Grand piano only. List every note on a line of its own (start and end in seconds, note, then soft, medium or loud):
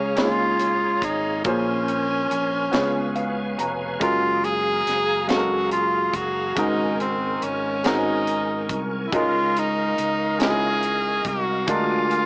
0.00 0.12 C#3 soft
0.00 0.15 A#3 medium
0.00 0.16 C#4 soft
0.00 0.23 F4 medium
0.00 0.17 G#4 medium
0.00 0.17 C#5 medium
0.15 1.17 A#3 medium
0.15 1.17 C#4 medium
0.15 0.23 D#4 soft
0.15 1.18 G#4 soft
0.15 1.18 C#5 medium
0.23 1.21 F4 soft
1.44 2.69 A#2 soft
1.44 2.45 A#3 medium
1.44 2.46 C#4 medium
1.44 2.46 F4 medium
1.44 2.47 G#4 medium
1.44 2.47 C5 medium
2.72 3.97 C#3 medium
2.72 3.73 B3 medium
2.72 3.74 C#4 medium
2.72 3.74 F4 medium
2.72 3.74 G#4 medium
2.72 3.74 C#5 medium
3.16 3.55 F5 medium
3.59 3.98 A#5 medium
3.99 5.02 F#3 medium
3.99 5.01 G#3 medium
3.99 5.01 C#4 medium
3.99 5.02 F4 medium
3.99 5.02 A#4 medium
5.27 6.30 F#3 soft
5.27 6.29 G#3 medium
5.27 6.29 C#4 medium
5.27 5.36 A4 medium
5.27 6.30 F5 medium
5.36 6.34 A#4 medium
6.55 7.81 G#2 soft
6.55 7.57 C#3 medium
6.55 7.57 G#3 medium
6.55 7.58 D#4 medium
6.55 7.58 F#4 medium
6.55 7.58 A#4 medium
7.84 8.85 G#3 medium
7.84 7.91 C4 soft
7.84 8.86 D#4 medium
7.84 8.86 F#4 soft
7.84 8.86 A#4 medium
7.91 8.88 C#4 soft
9.12 10.37 C#3 soft
9.12 10.13 G#3 medium
9.12 10.13 C#4 medium
9.12 10.14 D#4 medium
9.12 10.14 F4 medium
9.12 10.14 A#4 medium
10.39 11.40 G#3 medium
10.39 11.41 C#4 medium
10.39 11.41 D#4 medium
10.39 10.47 E4 soft
10.39 11.42 A#4 medium
10.48 11.45 F4 medium
11.66 12.26 D3 soft
11.66 12.26 F#3 medium
11.66 12.26 G#3 medium
11.66 12.26 D4 medium
11.66 12.26 F4 medium
11.66 12.26 A#4 medium